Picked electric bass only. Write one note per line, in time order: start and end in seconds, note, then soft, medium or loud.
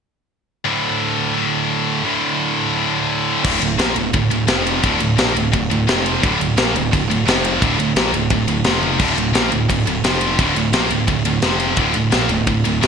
3.45 3.60 D1 medium
3.61 3.77 D1 medium
3.78 3.95 A#1 medium
3.96 4.12 D1 medium
4.13 4.30 D1 medium
4.31 4.47 D1 medium
4.47 4.80 F1 medium
4.84 4.99 D1 medium
4.99 5.16 D1 medium
5.17 5.34 A#1 medium
5.35 5.51 D1 medium
5.53 5.69 D1 medium
5.71 5.86 D1 medium
5.88 6.20 F1 medium
6.23 6.39 D1 loud
6.40 6.56 D1 medium
6.58 6.73 A#1 medium
6.75 6.91 D1 medium
6.93 7.08 D1 medium
7.10 7.25 D1 medium
7.27 7.59 F1 loud
7.62 7.77 D1 medium
7.79 7.95 D1 medium
7.96 8.11 A#1 medium
8.12 8.28 D1 medium
8.30 8.46 D1 medium
8.48 8.64 D1 medium
8.65 8.97 F1 medium
9.00 9.15 D1 medium
9.16 9.32 D1 medium
9.32 9.50 A#1 medium
9.51 9.68 D1 medium
9.70 9.85 D1 medium
9.85 10.02 D1 medium
10.02 10.35 F1 loud
10.39 10.54 D1 medium
10.55 10.72 D1 medium
10.72 10.89 A#1 medium
10.90 11.07 D1 medium
11.07 11.24 D1 medium
11.25 11.42 D1 medium
11.42 11.75 F1 loud
11.77 11.94 D1 medium
11.95 12.11 D1 medium
12.13 12.29 A#1 loud
12.30 12.46 D1 medium
12.47 12.64 D1 medium
12.65 12.81 D1 medium
12.83 12.87 F1 loud